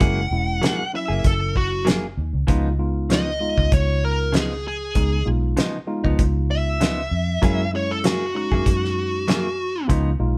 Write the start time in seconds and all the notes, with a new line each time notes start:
Already playing: F#5
0.00 F#1 F#3 G#3 A#3 C#4 E4 G#4, kick, closed hi-hat
0.31 E1 G#3 A#3 C#4 E4
0.62 F#3 A#3 E4 G#4, snare, closed hi-hat
0.93 F#3 A#3 C#4 E4 E5
1.08 F#1 A#3 E4 G#4
1.24 F#1 A4, kick, closed hi-hat
1.56 F#4, kick
1.85 F#3 A#3 E4 G#4, snare, closed hi-hat
2.17 D#2
2.33 C#2
2.47 C#2 C#3 F3 G#3 B3 D#4 F4, kick, closed hi-hat
2.79 G#3 B3 D#4 F4
3.10 C#3 F3 B3 D#4 D#5, snare, closed hi-hat
3.40 G#3 B3 D#4 F4
3.58 C#2, kick
3.72 C#2 C#5, kick, closed hi-hat
4.05 A#4
4.32 C#3 F3 B3 D#4, snare, closed hi-hat
4.37 G#4
4.68 G#4
4.95 C#2 G#3 B3 D#4 G#4, kick, closed hi-hat
5.25 B1 G#3 B3 D#4 F4
5.57 C#3 F3 B3 D#4, snare, closed hi-hat
5.87 G#3 B3 D#4 F4
6.04 C#2 F3 B3 D#4, kick
6.19 C#2, kick, closed hi-hat
6.51 E5
6.81 C#3 F3 B3 D#4, snare, closed hi-hat
7.11 F2
7.42 F#2 F#3 G#3 A#3 C#4 E4 G#4, kick, closed hi-hat
7.73 G#3 A#3 C#4 E4 C#5
7.91 A4
8.04 F#3 A#3 E4 F#4 G#4, snare, closed hi-hat
8.34 G#3 A#3 C#4 D#4 F#4
8.52 F#2 A#3 E4 G#4, kick
8.66 F#2, kick, closed hi-hat
8.85 snare
9.28 F#3 A#3 E4 G#4, snare, closed hi-hat
9.88 C#2 C#3 F3 G#3 B3 D#4 F4, kick, closed hi-hat
10.19 B1 G#3 B3 D#4 F4